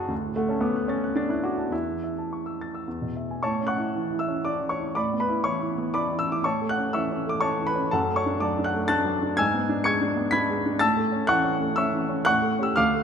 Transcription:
Already playing: F#2 C#3 F#4 G#4 A4 B4 F#5 C#6 F#6 A6
0.00 A5
0.08 D2
0.26 A2
0.36 A3 F#5
0.49 C#4 A5
0.61 B3 D6
0.76 F#6
0.88 C#4 A6
1.04 F#6
1.15 D4 A6
1.29 E4 F#6
1.44 F#4 D6
1.58 A5
1.69 E2 E4
1.88 E3
2.04 E5
2.19 A5
2.33 C#6
2.46 E6
2.61 A6
2.75 E6
2.88 E2
3.02 B2
3.16 E5
3.31 G#5
3.43 A2 C#5 A5 C#6
3.61 C#4
3.67 F#5 C#6 F#6
3.77 E4
3.95 E3
4.12 E4
4.19 E5 E6
4.28 C#4
4.45 E4 D5 D6
4.62 E3
4.69 C#5 C#6
4.79 E4
4.95 A2 D5 B5 D6
5.13 B3
5.20 B4 B5
5.29 E4
5.44 E3 C#5 C#6
5.62 E4
5.78 B3
5.94 E4 D5 B5 D6
6.11 E3
6.19 E6
6.29 E4 D6
6.44 A2 C#5 A5 C#6
6.61 A3
6.69 F#5 F#6
6.78 C#4
6.93 E3 E5 C#6 E6
7.12 C#4
7.27 A3 D6
7.41 C#4 C#5 A5 C#6
7.59 E3
7.67 B4 B5
7.75 C#4
7.91 F#2 A4 F#5 A5
8.10 A3
8.16 C#5 C#6
8.26 D4
8.40 F#3 D5 A5 D6
8.59 D4
8.64 F#5 F#6
8.74 A3
8.88 D4 A5 F#6 A6
9.05 F#3
9.22 D4
9.37 G#2 G#5 E6 G#6
9.54 B3
9.69 D4
9.84 G#3 C#6 G#6 C#7
10.01 D4
10.17 B3
10.31 D4 B5 G#6 B6
10.50 G#3
10.66 D4
10.79 A2 A5 E6 A6
10.97 A3
11.12 C#4
11.27 E3 F#5 C#6 F#6
11.44 C#4
11.61 A3
11.76 C#4 E5 C#6 E6
11.93 E3
12.09 C#4
12.25 A2 F#5 C#6 F#6
12.42 A3
12.59 C#4 G4 E6
12.76 D2 F5 D6 F6
12.94 A3

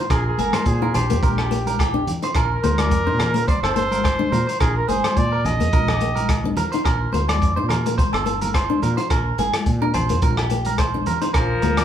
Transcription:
0.10 A#1 G#4 A#4, kick, cross-stick, closed hi-hat, low agogo
0.27 G#4
0.38 G#1 A#3 G#4 A#4, closed hi-hat, high conga
0.53 C5, cross-stick, closed hi-hat, high conga, low agogo
0.66 A#2 G#4, kick, closed hi-hat
0.82 F4 A#4
0.94 A#1 G4 C5, closed hi-hat, low conga, low agogo
1.10 F2 A#3, closed hi-hat
1.22 A#1 A#4, kick, closed hi-hat, high conga
1.38 G4, cross-stick, low agogo
1.51 A#3, closed hi-hat
1.66 A#4, closed hi-hat, high conga
1.79 G4, kick, cross-stick, closed hi-hat, low agogo
1.94 D4
2.07 closed hi-hat, low conga
2.22 D#4 C5, closed hi-hat
2.35 A#1 A#4, kick, cross-stick, closed hi-hat, low agogo
2.64 D2 A#3 C5, closed hi-hat, high conga
2.78 D5, cross-stick, closed hi-hat, high conga, low agogo
2.91 F2, kick, closed hi-hat
3.07 A#2 D4 C5
3.19 A#4, cross-stick, closed hi-hat, low conga, low agogo
3.34 A#3, closed hi-hat
3.48 C5 D5, kick, closed hi-hat, high conga
3.63 G1 A4 C5, cross-stick, low agogo
3.76 A#3 C5, closed hi-hat
3.91 A#4, closed hi-hat, high conga
4.04 C5, kick, cross-stick, closed hi-hat, low agogo
4.19 D4, high conga
4.32 A#2 A#4, closed hi-hat, low conga
4.47 C5, closed hi-hat
4.60 A#1 G#4 A#4, kick, cross-stick, closed hi-hat, low agogo
4.77 A#4
4.88 G#1 A#3 G#4 C5, closed hi-hat, high conga
5.04 C5, cross-stick, closed hi-hat, high conga, low agogo
5.17 A#2 D5, kick, closed hi-hat
5.32 A#4
5.45 A#1 D#5, closed hi-hat, low conga, low agogo
5.60 F2 A#3, closed hi-hat
5.73 A#1 A#4, kick, closed hi-hat, high conga
5.88 G4, cross-stick, low conga, low agogo
6.01 A#3, closed hi-hat
6.16 A#4, closed hi-hat, high conga
6.29 kick, cross-stick, closed hi-hat, low agogo
6.44 D4, high conga
6.57 A#4, closed hi-hat, low conga
6.72 D#4 C5, closed hi-hat
6.85 A#1 A#4, kick, cross-stick, closed hi-hat, low agogo
7.12 D2 A#3 C5, closed hi-hat, high conga
7.29 D5, cross-stick, closed hi-hat, high conga, low agogo
7.42 F2, kick, closed hi-hat
7.56 A#2 D4 C5
7.69 A#4, cross-stick, closed hi-hat, low conga, low agogo
7.86 A#3, closed hi-hat
7.98 C5, kick, closed hi-hat, high conga
8.13 G1 A4, cross-stick, low agogo
8.26 A#3, closed hi-hat
8.41 A#4, closed hi-hat, high conga
8.54 C5, kick, cross-stick, closed hi-hat, low agogo
8.70 D4, high conga
8.82 A#2 A#4, closed hi-hat, low conga
8.97 F4 C5, closed hi-hat
9.10 A#1 A#4, kick, cross-stick, closed hi-hat, low agogo
9.38 G#1 A#3 G#4, closed hi-hat, high conga
9.53 cross-stick, closed hi-hat, high conga, low agogo
9.66 A#2, kick, closed hi-hat
9.82 D4 A#4
9.94 A#1 C5, closed hi-hat, low conga, low agogo
10.09 F2 A#3, closed hi-hat
10.22 A#1 A#4, kick, closed hi-hat, high conga
10.37 G4, cross-stick, low agogo
10.50 A#3, closed hi-hat
10.65 A#4, closed hi-hat, high conga
10.78 C5, kick, cross-stick, closed hi-hat, low agogo
10.94 D4, high conga
11.06 A#4, closed hi-hat, low conga
11.21 D#4 C5, closed hi-hat
11.33 A#1 F3 A#4, kick, cross-stick, closed hi-hat, low agogo
11.62 D2 A#3, muted clean electric guitar stroke, closed hi-hat, high conga
11.77 D5, cross-stick, closed hi-hat, high conga, low agogo

